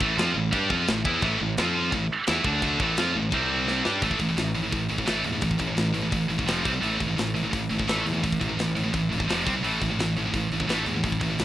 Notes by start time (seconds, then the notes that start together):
0.00 A1 A2 E3 A3, kick
0.18 F2 F3 C4 F4, snare, crash
0.36 A1 A2 E3
0.53 G2 G3 D4 G4, kick, crash
0.70 F2 F3 C4 F4, kick
0.88 A1 A2 E3, snare, crash
1.05 E2 E3 B3 E4, kick
1.22 A1 A2 E3 A3, kick, crash
1.40 A1 A2 E3
1.57 F2 F3 C4 F4, snare, crash
1.92 A1 A2 E3, kick, crash
2.27 E2 E3 B3 E4, snare, crash
2.44 D2 D3 A3 D4, kick
2.62 kick, crash
2.79 A1 A2 E3 A3, kick
2.97 F2 F3 C4 F4, snare, crash
3.14 A1 A2 E3
3.31 C2 C3 G3 C4, kick, crash
3.68 snare
3.84 G2 G3 D4 G4, snare
4.02 A1 A2 E3 A3, kick, open hi-hat
4.11 kick
4.19 A1 A2 E3, kick, open hi-hat
4.29 A2 E3
4.37 A1 A2 E3, snare, open hi-hat
4.54 A2 E3, open hi-hat
4.64 A2 E3
4.72 A1 A2 E3, kick, open hi-hat
4.89 A1 A2 E3, open hi-hat
4.98 A2 E3, kick
5.06 A1 A2 E3 A3, snare, open hi-hat
5.24 E2 A2 E3, open hi-hat
5.33 A2 E3
5.41 A1 A2 E3, kick, open hi-hat
5.51 kick
5.58 A1 A2 E3, kick, open hi-hat
5.66 A2 E3
5.77 A1 A2 E3, snare, open hi-hat
5.93 A2 E3, open hi-hat
6.02 A2 E3
6.11 A1 A2 E3, kick, open hi-hat
6.29 A1 A2 E3, open hi-hat
6.38 A2 E3, kick
6.47 F1 F2 C3 F3, snare, open hi-hat
6.64 C2 C3 G3 C4, kick, open hi-hat
6.74 C3 G3
6.82 A1 A2 E3 A3, open hi-hat
7.00 A1 A2 E3, kick, open hi-hat
7.08 A2 E3
7.17 A1 A2 E3, snare, open hi-hat
7.35 A2 E3, open hi-hat
7.44 A2 E3
7.52 A1 A2 E3, kick, open hi-hat
7.70 A1 A2 E3, open hi-hat
7.79 A2 E3, kick
7.87 A1 A2 E3 A3, snare, open hi-hat
8.05 E2 A2 E3, open hi-hat
8.14 A2 E3
8.23 A1 A2 E3, kick, open hi-hat
8.32 kick
8.41 A1 A2 E3, kick, open hi-hat
8.49 A2 E3
8.57 A1 A2 E3, snare, open hi-hat
8.75 A2 E3, open hi-hat
8.84 A2 E3
8.93 A1 A2 E3, kick, open hi-hat
9.11 E1 A2 E3, open hi-hat
9.20 A2 E3, kick
9.28 F1 F2 C3 F3, snare, open hi-hat
9.47 C2 C3 G3 C4, kick, open hi-hat
9.56 C3 G3
9.64 A1 A2 E3 A3, open hi-hat
9.82 A1 A2 E3, kick, open hi-hat
9.91 A2 E3
9.99 A1 A2 E3, snare, open hi-hat
10.17 A2 E3, open hi-hat
10.27 A2 E3
10.34 A1 A2 E3, kick, open hi-hat
10.51 A1 A2 E3, open hi-hat
10.60 A2 E3, kick
10.69 A1 A2 E3 A3, snare, open hi-hat
10.86 E2 A2 E3, open hi-hat
10.96 A2 E3
11.04 A1 A2 E3, kick, open hi-hat
11.12 kick
11.21 A1 A2 E3, kick, open hi-hat
11.31 A2 E3
11.39 A1 A2 E3, snare, open hi-hat